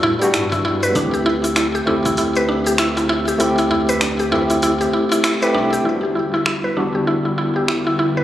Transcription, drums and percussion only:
0.03 darbuka ka soft
0.21 open hi-hat soft
0.21 shaker medium
0.34 finger snap medium
0.34 open hi-hat medium
0.34 shaker medium
0.52 kick medium
0.52 open hi-hat soft
0.52 darbuka ka medium
0.52 darbuka tek medium
0.52 shaker soft
0.83 open hi-hat soft
0.83 darbuka ka soft
0.83 darbuka tek soft
0.83 shaker medium
0.95 kick loud
0.95 open hi-hat medium
0.95 shaker medium
1.14 shaker soft
1.44 open hi-hat soft
1.44 shaker medium
1.56 finger snap medium
1.56 open hi-hat medium
1.56 darbuka tek medium
1.56 shaker soft
1.75 shaker soft
1.87 darbuka dum medium
2.05 kick medium
2.05 open hi-hat soft
2.05 darbuka ka medium
2.05 shaker medium
2.17 open hi-hat medium
2.17 shaker medium
2.35 open hi-hat soft
2.35 shaker soft
2.66 open hi-hat soft
2.66 shaker medium
2.78 finger snap loud
2.78 open hi-hat medium
2.78 shaker medium
2.97 open hi-hat soft
2.97 darbuka ka medium
2.97 darbuka tek medium
2.97 shaker soft
3.09 darbuka ka medium
3.28 shaker medium
3.40 open hi-hat medium
3.40 shaker medium
3.58 open hi-hat soft
3.58 shaker soft
3.70 darbuka dum medium
3.89 open hi-hat soft
3.89 shaker medium
4.01 finger snap loud
4.01 open hi-hat medium
4.01 darbuka tek medium
4.01 shaker soft
4.19 open hi-hat soft
4.19 shaker soft
4.32 darbuka dum medium
4.50 open hi-hat soft
4.50 darbuka ka medium
4.50 shaker medium
4.62 open hi-hat medium
4.62 shaker medium
4.81 open hi-hat soft
4.81 darbuka ka medium
4.81 shaker soft
4.93 darbuka ka soft
5.12 open hi-hat soft
5.12 shaker medium
5.24 finger snap loud
5.24 open hi-hat medium
5.24 shaker medium
5.42 open hi-hat soft
5.42 darbuka ka medium
5.42 darbuka tek medium
5.42 shaker soft
5.73 open hi-hat soft
5.73 darbuka ka soft
5.73 darbuka tek soft
5.73 shaker medium
6.46 finger snap medium
7.68 finger snap medium

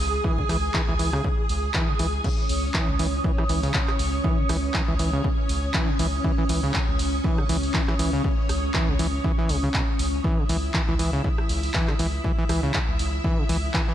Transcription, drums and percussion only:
0.24 kick loud
0.38 kick medium
0.49 cross-stick medium
0.49 open hi-hat loud
0.74 kick loud
0.74 clap loud
0.99 open hi-hat loud
1.13 cross-stick medium
1.24 kick loud
1.49 open hi-hat loud
1.74 kick loud
1.74 clap loud
1.99 open hi-hat loud
2.24 kick loud
2.24 crash medium
2.49 open hi-hat loud
2.74 kick loud
2.74 clap loud
2.99 open hi-hat loud
3.24 kick loud
3.38 cross-stick medium
3.49 open hi-hat loud
3.63 open hi-hat medium
3.74 kick loud
3.74 clap loud
3.88 cross-stick medium
3.88 clap soft
3.99 open hi-hat loud
4.24 kick loud
4.49 cross-stick medium
4.49 open hi-hat loud
4.74 kick loud
4.74 clap loud
4.99 open hi-hat loud
5.24 kick loud
5.49 open hi-hat loud
5.74 kick loud
5.74 clap loud
5.99 open hi-hat loud
6.24 kick loud
6.49 open hi-hat loud
6.74 kick loud
6.74 clap loud
6.99 open hi-hat loud
7.24 kick loud
7.38 cross-stick medium
7.49 open hi-hat loud
7.63 open hi-hat medium
7.74 kick loud
7.74 clap loud
7.88 cross-stick medium
7.88 clap soft
7.99 open hi-hat loud
8.24 kick loud
8.49 cross-stick medium
8.49 open hi-hat loud
8.74 kick loud
8.74 clap loud
8.99 open hi-hat loud
9.24 kick loud
9.49 open hi-hat loud
9.74 kick loud
9.74 clap loud
9.99 open hi-hat loud
10.24 kick loud
10.49 open hi-hat loud
10.74 kick loud
10.74 clap loud
10.99 open hi-hat loud
11.24 kick loud
11.38 cross-stick medium
11.49 open hi-hat loud
11.63 open hi-hat medium
11.74 kick loud
11.74 clap loud
11.88 cross-stick medium
11.88 clap soft
11.99 open hi-hat loud
12.24 kick loud
12.49 cross-stick medium
12.49 open hi-hat loud
12.74 kick loud
12.74 clap loud
12.99 open hi-hat loud
13.24 kick loud
13.49 open hi-hat loud
13.74 kick loud
13.74 clap loud

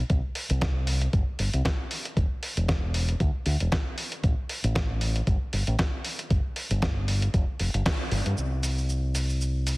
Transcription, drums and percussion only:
0.10 kick loud
0.10 closed hi-hat soft
0.35 open hi-hat loud
0.50 closed hi-hat medium
0.61 kick loud
0.61 snare loud
0.61 closed hi-hat soft
0.87 open hi-hat loud
1.01 closed hi-hat medium
1.13 kick loud
1.13 closed hi-hat soft
1.39 open hi-hat loud
1.54 closed hi-hat medium
1.65 kick loud
1.65 snare loud
1.65 closed hi-hat soft
1.91 open hi-hat loud
2.05 closed hi-hat medium
2.17 kick loud
2.17 closed hi-hat soft
2.43 open hi-hat medium
2.57 closed hi-hat medium
2.68 kick loud
2.68 snare loud
2.68 closed hi-hat medium
2.94 open hi-hat loud
3.09 closed hi-hat medium
3.20 kick loud
3.20 closed hi-hat soft
3.46 open hi-hat medium
3.60 closed hi-hat medium
3.72 kick loud
3.72 snare loud
3.72 closed hi-hat soft
3.98 open hi-hat loud
4.12 closed hi-hat medium
4.24 kick loud
4.24 closed hi-hat medium
4.49 open hi-hat loud
4.64 closed hi-hat medium
4.75 kick loud
4.75 snare loud
4.75 closed hi-hat medium
5.01 open hi-hat loud
5.16 closed hi-hat medium
5.27 kick loud
5.27 closed hi-hat medium
5.53 open hi-hat loud
5.67 closed hi-hat medium
5.79 kick loud
5.79 snare loud
5.79 closed hi-hat medium
6.05 open hi-hat loud
6.19 closed hi-hat medium
6.30 kick loud
6.30 closed hi-hat medium
6.56 open hi-hat loud
6.71 closed hi-hat medium
6.82 kick loud
6.82 snare loud
6.82 closed hi-hat medium
7.08 open hi-hat loud
7.22 closed hi-hat medium
7.34 kick loud
7.34 closed hi-hat medium
7.60 open hi-hat medium
7.74 closed hi-hat medium
7.86 kick loud
7.86 snare loud
7.86 open hi-hat medium
8.11 open hi-hat loud
8.26 closed hi-hat medium
8.38 cabasa soft
8.63 open hi-hat medium
8.63 cabasa medium
8.78 cabasa soft
8.89 cabasa soft
9.15 open hi-hat medium
9.15 cabasa medium
9.30 cabasa soft
9.41 cabasa soft
9.67 open hi-hat medium
9.67 cabasa medium

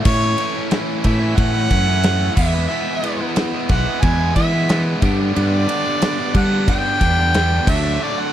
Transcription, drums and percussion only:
0.05 kick loud
0.05 crash loud
0.38 ride medium
0.71 snare loud
0.71 ride loud
1.04 kick medium
1.04 ride medium
1.38 kick loud
1.38 ride loud
1.71 kick medium
1.71 ride medium
2.03 snare loud
2.03 ride loud
2.37 kick loud
2.37 crash loud
3.03 ride medium
3.36 snare loud
3.36 ride loud
3.69 kick medium
3.69 ride medium
4.02 kick loud
4.02 ride loud
4.36 kick medium
4.36 ride medium
4.69 snare loud
4.69 ride loud
5.02 kick loud
5.02 ride medium
5.36 ride loud
5.69 ride medium
6.02 snare loud
6.02 ride loud
6.35 kick medium
6.35 ride medium
6.68 kick loud
6.68 ride loud
7.01 kick medium
7.01 ride medium
7.34 snare loud
7.34 ride loud
7.67 kick loud
7.67 crash loud

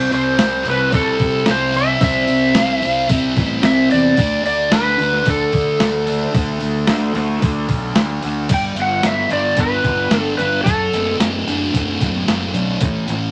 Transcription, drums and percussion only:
0.12 open hi-hat medium
0.39 snare loud
0.39 open hi-hat medium
0.65 open hi-hat medium
0.92 kick loud
0.92 open hi-hat medium
1.19 kick medium
1.19 open hi-hat medium
1.46 snare loud
1.46 open hi-hat medium
1.74 open hi-hat medium
2.01 kick loud
2.01 open hi-hat medium
2.28 open hi-hat medium
2.55 snare loud
2.55 open hi-hat medium
2.82 open hi-hat medium
3.09 kick medium
3.09 open hi-hat loud
3.37 kick medium
3.37 open hi-hat medium
3.63 snare loud
3.63 open hi-hat medium
3.91 open hi-hat medium
4.17 kick loud
4.17 open hi-hat loud
4.46 open hi-hat medium
4.72 snare loud
4.72 open hi-hat medium
4.99 open hi-hat medium
5.13 snare soft
5.26 kick loud
5.26 open hi-hat medium
5.53 kick medium
5.53 open hi-hat medium
5.80 snare loud
5.80 open hi-hat medium
6.07 open hi-hat medium
6.34 kick loud
6.34 open hi-hat medium
6.60 open hi-hat medium
6.87 snare loud
6.87 open hi-hat medium
7.15 open hi-hat medium
7.42 kick medium
7.42 open hi-hat loud
7.69 kick medium
7.69 open hi-hat medium
7.95 snare loud
7.95 open hi-hat medium
8.23 open hi-hat medium
8.49 kick loud
8.49 closed hi-hat loud
8.49 crash loud
8.76 closed hi-hat medium
9.03 snare loud
9.03 closed hi-hat medium
9.30 closed hi-hat medium
9.57 kick medium
9.57 closed hi-hat loud
9.84 kick medium
9.84 closed hi-hat medium
10.11 snare loud
10.11 closed hi-hat medium
10.39 closed hi-hat medium
10.66 kick loud
10.66 closed hi-hat loud
10.93 closed hi-hat medium
11.20 snare loud
11.20 closed hi-hat loud
11.48 closed hi-hat medium
11.74 kick medium
11.74 closed hi-hat loud
12.01 kick medium
12.01 closed hi-hat medium
12.28 snare loud
12.28 closed hi-hat medium
12.55 closed hi-hat medium
12.81 kick loud
12.81 closed hi-hat loud
13.08 closed hi-hat medium

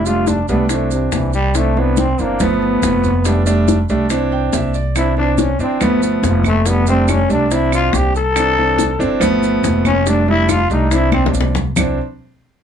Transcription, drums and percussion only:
0.06 high bongo soft
0.06 high conga soft
0.06 maracas medium
0.27 high bongo medium
0.27 high conga medium
0.27 maracas medium
0.48 maracas soft
0.69 high bongo medium
0.69 high conga soft
0.69 maracas medium
0.91 high bongo soft
0.91 high conga soft
0.91 maracas medium
1.12 high bongo medium
1.12 low bongo medium
1.12 high conga medium
1.12 maracas medium
1.33 high bongo soft
1.33 maracas soft
1.55 high bongo medium
1.55 high conga soft
1.55 maracas medium
1.76 high bongo soft
1.76 high conga soft
1.97 high bongo medium
1.97 high conga medium
1.97 maracas medium
2.18 high conga soft
2.18 maracas soft
2.40 high bongo medium
2.40 high conga soft
2.40 low conga medium
2.40 maracas medium
2.61 high bongo soft
2.61 high conga soft
2.83 high bongo medium
2.83 low bongo medium
2.83 high conga medium
2.83 maracas medium
3.04 high bongo soft
3.04 high conga medium
3.04 maracas soft
3.24 high bongo medium
3.24 high conga soft
3.24 maracas medium
3.46 high bongo soft
3.46 high conga soft
3.46 maracas medium
3.68 high bongo medium
3.68 high conga soft
3.68 maracas medium
3.89 maracas soft
4.10 high bongo medium
4.10 high conga soft
4.10 maracas medium
4.31 high bongo soft
4.31 high conga soft
4.53 high bongo medium
4.53 low bongo medium
4.53 high conga medium
4.53 maracas medium
4.74 high bongo soft
4.74 maracas soft
4.96 high bongo medium
4.96 high conga soft
4.96 claves medium
4.96 maracas medium
5.17 high bongo soft
5.17 high conga soft
5.38 high bongo medium
5.38 high conga medium
5.38 maracas medium
5.60 high conga soft
5.60 maracas soft
5.81 high bongo medium
5.81 high conga soft
5.81 low conga medium
5.81 claves medium
5.81 maracas medium
6.02 high bongo soft
6.02 high conga soft
6.02 maracas medium
6.23 high bongo medium
6.23 low bongo medium
6.23 high conga medium
6.23 maracas medium
6.44 high bongo soft
6.44 high conga medium
6.44 claves medium
6.44 maracas soft
6.66 high bongo medium
6.66 maracas medium
6.87 high bongo soft
6.87 high conga soft
6.87 maracas medium
7.08 high bongo medium
7.08 high conga medium
7.08 claves medium
7.08 maracas medium
7.30 maracas soft
7.51 high bongo medium
7.51 high conga soft
7.51 maracas medium
7.72 high bongo soft
7.72 high conga soft
7.72 claves medium
7.72 maracas medium
7.93 high bongo medium
7.93 low bongo medium
7.93 high conga medium
7.93 maracas medium
8.14 high bongo soft
8.14 maracas soft
8.36 high bongo medium
8.36 high conga soft
8.36 claves medium
8.36 maracas medium
8.57 high bongo soft
8.57 high conga soft
8.78 high bongo medium
8.78 high conga medium
8.78 maracas medium
9.00 high conga soft
9.00 maracas soft
9.21 high bongo medium
9.21 high conga soft
9.21 low conga medium
9.21 claves medium
9.21 maracas medium
9.43 high bongo soft
9.43 high conga soft
9.43 maracas medium
9.64 high bongo medium
9.64 low bongo medium
9.64 high conga medium
9.64 maracas medium
9.85 high bongo soft
9.85 high conga medium
9.85 claves medium
9.85 maracas soft
10.06 high bongo medium
10.06 high conga soft
10.06 maracas medium
10.27 high bongo soft
10.27 high conga soft
10.49 high bongo medium
10.49 high conga medium
10.49 claves medium
10.49 maracas medium
10.71 maracas soft
10.91 high bongo medium
10.91 high conga soft
10.91 maracas medium
11.12 high bongo medium
11.12 high conga loud
11.12 claves medium
11.26 low bongo loud
11.33 high conga medium
11.33 maracas medium
11.41 low bongo medium
11.55 low bongo medium
11.55 low conga medium
11.55 maracas soft
11.76 low bongo medium
11.76 low conga loud
11.76 claves loud
11.76 maracas loud

